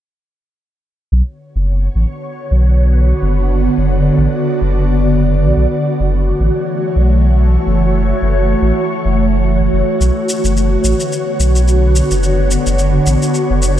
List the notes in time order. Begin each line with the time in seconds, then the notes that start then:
1.11 B1 D3 B3 F#4 C#5
1.56 F#1
1.95 A1
2.51 B1
3.22 F#1
3.34 D5
3.78 F#1
4.18 A1
4.61 F#1
5.45 B1
5.57 B1 E3 A3 F#4 C#5
6.00 F#1
6.40 A1
6.96 B1
7.67 F#1
8.22 F#1
8.62 A1
9.05 F#1
9.61 F#1
9.73 F#1
10.01 B1 D3 B3 C#5, shaker
10.29 shaker
10.44 F#1, shaker
10.57 shaker
10.84 A1, shaker
11.00 shaker
11.13 shaker
11.40 B1, shaker
11.56 shaker
11.68 shaker
11.96 shaker
12.11 F#1, shaker
12.23 shaker
12.51 shaker
12.66 F#1, shaker
12.79 shaker
13.07 A1, shaker
13.23 shaker
13.35 shaker
13.50 F#1
13.63 shaker